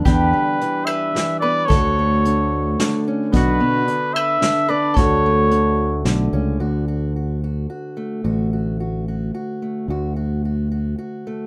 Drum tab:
HH |x-x-x-|x-x-x-|x-x-x-|x-x-x-|
SD |----o-|----o-|----o-|----o-|
BD |o-----|o-----|o-----|o-----|

HH |------|------|------|
SD |------|------|------|
BD |------|------|------|